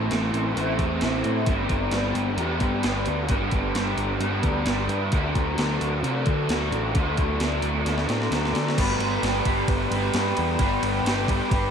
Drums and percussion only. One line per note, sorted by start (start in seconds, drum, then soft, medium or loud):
0.11 snare loud
0.11 open hi-hat medium
0.34 open hi-hat medium
0.57 open hi-hat medium
0.79 kick medium
0.79 open hi-hat medium
1.01 snare loud
1.01 open hi-hat medium
1.24 open hi-hat soft
1.46 kick loud
1.46 open hi-hat medium
1.69 kick medium
1.69 open hi-hat soft
1.91 snare loud
1.91 open hi-hat medium
2.15 open hi-hat medium
2.38 open hi-hat medium
2.60 kick medium
2.60 open hi-hat medium
2.83 snare loud
2.83 open hi-hat medium
3.06 open hi-hat medium
3.29 kick loud
3.29 open hi-hat medium
3.51 kick medium
3.51 open hi-hat medium
3.75 snare loud
3.75 open hi-hat medium
3.87 snare soft
3.98 open hi-hat medium
4.21 open hi-hat medium
4.43 kick medium
4.43 open hi-hat medium
4.66 snare loud
4.66 open hi-hat medium
4.89 open hi-hat medium
5.12 kick loud
5.12 open hi-hat medium
5.35 kick medium
5.35 open hi-hat medium
5.58 snare loud
5.58 open hi-hat medium
5.81 open hi-hat medium
6.04 open hi-hat medium
6.26 kick medium
6.26 open hi-hat medium
6.49 snare loud
6.49 open hi-hat medium
6.72 open hi-hat medium
6.95 kick loud
6.95 open hi-hat medium
7.17 kick medium
7.17 open hi-hat medium
7.40 snare loud
7.40 open hi-hat medium
7.52 snare soft
7.62 open hi-hat medium
7.86 snare medium
7.86 open hi-hat medium
7.98 snare medium
8.09 snare medium
8.09 open hi-hat medium
8.22 snare medium
8.32 snare medium
8.32 open hi-hat medium
8.45 snare medium
8.55 snare medium
8.55 open hi-hat medium
8.69 snare medium
8.78 kick loud
8.78 crash loud
8.78 ride loud
9.00 ride medium
9.23 snare loud
9.23 ride loud
9.45 kick medium
9.45 ride medium
9.68 kick loud
9.68 ride loud
9.92 ride medium
10.14 snare loud
10.14 ride loud
10.37 ride medium
10.59 kick loud
10.59 ride loud
10.83 ride medium
11.06 snare loud
11.06 ride loud
11.28 kick medium
11.28 ride medium
11.51 kick loud
11.51 ride loud